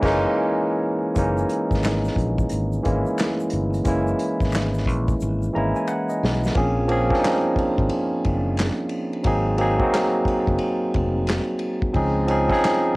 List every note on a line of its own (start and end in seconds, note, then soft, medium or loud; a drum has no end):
0.00 0.24 F#1 loud
0.00 1.15 E3 medium
0.00 0.02 G#3 medium
0.00 0.24 G#3 loud
0.00 0.03 A#3 loud
0.00 0.24 A#3 medium
0.00 0.04 C#4 medium
0.00 0.05 D#4 medium
0.00 1.18 E4 loud
0.00 kick loud
0.00 crash medium
0.04 0.25 C#4 medium
0.04 0.26 D#4 loud
0.04 snare loud
1.15 1.43 F#1 medium
1.15 2.27 E3 medium
1.15 2.28 G#3 medium
1.15 2.28 A#3 medium
1.15 2.29 C#4 medium
1.15 2.29 D#4 medium
1.15 kick loud
1.15 closed hi-hat medium
1.15 shaker medium
1.38 shaker soft
1.49 closed hi-hat medium
1.71 2.08 G#1 medium
1.71 kick loud
1.71 snare soft
1.71 shaker soft
1.83 finger snap medium
1.83 snare loud
1.83 clap medium
1.83 closed hi-hat medium
1.83 shaker medium
2.04 snare soft
2.04 shaker soft
2.16 2.44 A#1 medium
2.16 kick medium
2.16 closed hi-hat medium
2.38 kick loud
2.38 shaker soft
2.49 2.79 G#1 medium
2.49 closed hi-hat medium
2.49 shaker medium
2.72 shaker soft
2.83 3.03 G#1 medium
2.83 3.70 E3 medium
2.83 3.71 G#3 medium
2.83 3.71 A#3 medium
2.83 3.72 C#4 medium
2.83 kick medium
2.83 closed hi-hat medium
2.87 3.72 E4 medium
3.06 shaker soft
3.18 finger snap medium
3.18 snare loud
3.18 clap medium
3.18 closed hi-hat medium
3.18 shaker medium
3.40 shaker soft
3.50 3.79 G1 medium
3.50 closed hi-hat medium
3.74 closed hi-hat soft
3.74 shaker soft
3.84 4.13 F#1 loud
3.84 4.97 E3 medium
3.84 4.97 G#3 medium
3.84 4.98 A#3 medium
3.84 4.98 C#4 medium
3.84 4.99 E4 medium
3.84 kick loud
3.84 closed hi-hat medium
3.84 shaker medium
4.07 shaker soft
4.19 closed hi-hat medium
4.41 4.87 G#1 medium
4.41 kick loud
4.41 snare soft
4.41 shaker soft
4.52 finger snap medium
4.52 snare loud
4.52 clap medium
4.52 closed hi-hat medium
4.52 shaker medium
4.74 snare soft
4.74 shaker soft
4.86 5.14 A#1 medium
4.86 kick medium
4.86 closed hi-hat medium
5.08 kick loud
5.08 shaker soft
5.21 5.48 G#1 medium
5.21 shaker medium
5.42 shaker soft
5.53 5.72 G#1 medium
5.53 6.40 E3 medium
5.53 6.41 G#3 medium
5.53 6.41 A#3 medium
5.53 6.42 C#4 medium
5.53 5.75 A#5 medium
5.57 6.42 E4 medium
5.76 5.87 G#5 medium
5.76 shaker soft
5.88 6.08 F#5 medium
5.88 finger snap medium
5.88 shaker medium
6.09 6.52 D#5 medium
6.09 shaker soft
6.23 6.49 B1 medium
6.23 snare medium
6.44 snare medium
6.44 shaker soft
6.54 7.10 A#1 loud
6.54 6.84 F3 medium
6.54 6.84 A#3 medium
6.54 6.85 C4 medium
6.54 6.85 C#4 medium
6.54 6.86 G#4 medium
6.54 kick loud
6.54 ride medium
6.87 7.06 F3 medium
6.87 7.06 A#3 medium
6.87 7.07 C4 medium
6.87 7.07 C#4 medium
6.87 ride medium
6.92 7.08 G#4 medium
7.09 8.17 F3 medium
7.09 8.18 A#3 medium
7.09 8.18 C4 medium
7.09 8.18 C#4 medium
7.09 7.16 D4 medium
7.09 kick loud
7.14 snare soft
7.19 8.22 D#4 loud
7.24 snare loud
7.24 clap medium
7.24 ride medium
7.56 muted fingered electric bass stroke soft
7.56 kick medium
7.56 ride medium
7.78 7.88 G#1 loud
7.78 kick loud
7.89 ride medium
8.24 8.69 F#1 medium
8.24 kick medium
8.24 ride medium
8.57 snare loud
8.57 clap medium
8.57 ride medium
8.89 ride medium
9.13 ride soft
9.23 9.79 G#1 loud
9.23 9.53 F#3 medium
9.23 9.54 A#3 medium
9.23 9.54 C4 medium
9.23 9.55 D#4 medium
9.23 kick loud
9.23 ride medium
9.27 9.55 G#4 medium
9.57 9.75 F#3 medium
9.57 9.76 A#3 medium
9.57 9.76 C4 medium
9.57 9.77 D#4 medium
9.57 ride medium
9.61 9.77 G#4 loud
9.79 10.87 F#3 medium
9.79 10.87 A#3 medium
9.79 10.88 C4 medium
9.79 10.88 D#4 medium
9.79 kick loud
9.83 10.89 F#4 loud
9.94 snare loud
9.94 clap medium
9.94 ride medium
10.25 muted fingered electric bass stroke soft
10.25 kick medium
10.25 ride medium
10.47 10.58 F#1 medium
10.47 kick loud
10.59 ride medium
10.94 11.39 F1 loud
10.94 kick medium
10.94 ride medium
11.27 snare loud
11.27 clap medium
11.27 ride medium
11.59 ride medium
11.82 kick loud
11.93 12.49 C#2 loud
11.93 12.23 F3 medium
11.93 12.23 C4 medium
11.93 12.24 C#4 medium
11.93 12.24 D#4 medium
11.93 12.25 G#4 medium
11.93 kick loud
11.93 ride medium
12.27 12.45 F3 medium
12.27 12.46 C4 medium
12.27 12.46 C#4 medium
12.27 12.47 D#4 medium
12.27 ride medium
12.31 12.47 G#4 medium
12.48 12.96 F3 medium
12.48 12.96 C4 medium
12.48 12.96 C#4 medium
12.48 12.96 D#4 medium
12.48 kick loud
12.48 ride soft
12.53 12.96 G#4 loud
12.53 snare soft
12.64 snare loud
12.64 clap medium
12.64 ride medium